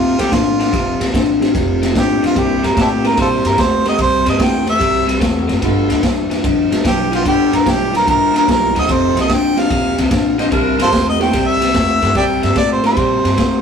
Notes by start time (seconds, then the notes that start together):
Already playing: D#2 F2 C3 A3 C4 D#4 F4 G4
0.18 C2 F2 C3 A3 C4 D#4 F4 G4 A4, snare, ride
0.32 A1 F2 D3 F4, kick, snare, ride
0.59 F2 D3, snare, ride
0.72 F1 F2 C3, kick, snare, ride
1.00 C2 F2 C3, snare, ride
1.13 A1 F2 D3, kick, snare, ride
1.40 F2 D3 A3 C4 D#4 F4 G4, snare, ride
1.54 F1 F2 C3, kick, snare, ride
1.82 F2 C3 A3 C4 D#4 F4 G4, snare, ride
1.95 A1 F2 D3 G4, kick, snare, ride
2.23 C2 F2 D3 F4, snare, ride
2.35 C2 C3 G3 A#3 C4 D4 E4 G4, kick, snare, ride
2.63 G2 C3 G3 A#4, snare, ride
2.77 A2 C3 A3 D4 E4 G4, kick, snare, ride
3.03 C3 A3 A#3 C4 D4 E4 G4 A#4, snare, ride
3.17 A#2 C3 G3 F4 A4 C5, kick, snare, ride
3.45 G2 C3 G3 A#4, snare, ride
3.58 E2 C3 A3 C5, kick, snare, ride
3.85 C3 A3 D#5, snare, ride
3.98 C2 C3 G3 C5, kick, snare, ride
4.25 G2 C3 G3, snare, ride
4.30 D#5
4.38 E2 C3 A3 A#3 C4 D4 E4 G4, kick, snare, ride
4.42 G5
4.66 C3 A3 E5, snare, ride
4.79 C2 C3 G3, kick, snare, ride
5.07 C3 G3, snare, ride
5.20 E2 C3 A3, kick, snare, ride
5.48 F#1 C3 A3, snare, ride
5.61 G1 G2 D3 A3 B3 D4 F4 G4 A4, kick, snare, ride
5.89 D2 G2 D3, snare, ride
6.03 E2 G2 E3, kick, snare, ride
6.30 G2 E3, snare, ride
6.44 F2 G2 D3, kick, snare, ride
6.71 D2 G2 D3 A3 B3 D4 F4 G4, snare, ride
6.84 B1 G2 E3 G4, kick, snare, ride
7.11 G2 E3 B3 F4 G4, snare, ride
7.25 G1 G2 D3 B3 F4 G4 A4, kick, snare, ride
7.52 D2 G2 D3, snare, ride
7.56 A#4
7.65 B1 G2 E3 A3 B3 D4 F4 G4, kick, snare, ride
7.69 G4
7.93 G2 E3 A#4, snare, ride
8.06 G1 G2 D3 A#4, kick, snare, ride
8.34 G2 D3 A#4, snare, ride
8.47 B1 G2 E3 A3 B3 D4 F4 G4, kick, snare, ride
8.52 A#4
8.75 D2 G2 E3 B3 F4 A4, snare, ride
8.79 D#5
8.88 F1 F2 C3 D#4 G4 A4, kick, snare, ride
8.93 C5
9.15 C2 F2 C3, snare, ride
9.21 D#5
9.29 D2 F2 D3, kick, snare, ride
9.34 G5
9.56 F2 D3 A3 C4 D#4 F4 G4 F5, snare, ride
9.70 D#2 F2 C3, kick, snare, ride
9.98 C2 F2 C3, snare, ride
10.11 A1 F2 D3, kick, snare, ride
10.38 F2 D3 D#4 G4 C5, snare, ride
10.51 C2 C3 G3 D4 E4 A#4, kick, snare, ride
10.79 G2 C3 G3 F4 A4 C5, snare, ride
10.92 E2 C3 A3, kick, snare, ride
11.09 D#5
11.19 C3 A3 A#3 C4 D4 E4 G4 G5, snare, ride
11.33 C2 C3 G3, kick, snare, ride
11.48 E5
11.61 C3 G3, snare, ride
11.74 E2 C3 A3, kick, snare, ride
12.01 G2 C3 A3 D4 E4 A4, snare, ride
12.15 C2 C3 G3 D5 E5 G5, kick, snare, ride
12.42 G2 C3 G3 E5, snare, ride
12.56 C3 A3 D5, kick, snare, ride
12.72 C5
12.83 C3 A3 A#3 C4 D4 E4 G4 C5, snare, ride
12.97 A#2 C3 G3, kick, snare, ride
13.24 G2 C3 G3, snare, ride
13.37 E2 C3 A3, kick, snare, ride